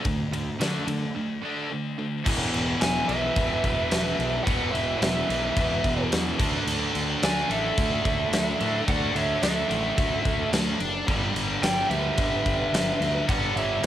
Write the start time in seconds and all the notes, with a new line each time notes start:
0.05 D2 D3 A3, kick, ride
0.31 D2 D3 A3, ride
0.60 D3 A3 D4, snare, ride
0.87 D3 A3, ride
1.16 D3 A3
1.45 D3 A3 D4
1.72 D3 A3
1.99 D3 A3
2.25 E1 E2 B2 E3, kick, crash
2.54 E1, crash
2.81 E1 E5 G#5, snare, crash
3.08 B1 E2 B2 E3 B4 E5, crash
3.36 E1 E2 B2 E3, kick, crash
3.64 E1, kick, crash
3.91 E1, snare, crash
4.19 B1, crash
4.43 E1 E2 B4 F#5, kick
4.47 B2 E3, crash
4.72 E1 B4 E5, crash
4.99 E1 B4 E5, crash
5.03 snare
5.28 B1 E2 B2 E3, crash
5.56 E1 E2 B2 E3, kick, crash
5.84 E1, kick, crash
6.12 E2, snare, crash
6.38 D2 D3 A3 D4, kick, crash
6.67 D2, crash
6.95 D2, crash
7.21 D2 D3 A3 D4 D5 G#5, snare, crash
7.48 A1 D3 A3 D4 A4 E5, crash
7.78 D2, kick, crash
8.05 D2, kick, crash
8.32 D2, snare, crash
8.60 A2 D3 A3 D4, crash
8.88 D2 D5 F#5, kick, crash
9.15 D2 C#5 E5, crash
9.42 D2 D3 A3 D4 A4 E5, snare, crash
9.69 A1 D3 A3 D4, crash
9.98 D2, kick, crash
10.25 D2, kick, crash
10.53 D2, snare, crash
10.80 F#1, crash
11.07 G1 G2 D3 G3, kick, crash
11.34 G1, crash
11.62 G1 D5 G5, snare, crash
11.89 D2 G2 D3 G3 B4 E5, crash
12.17 G1 G2 D3 G3, kick, crash
12.46 G1, kick, crash
12.72 G1, snare, crash
13.00 D2, crash
13.27 G1 G2 D3 G3 D5 F#5, kick, crash
13.56 G1 C#5 E5, crash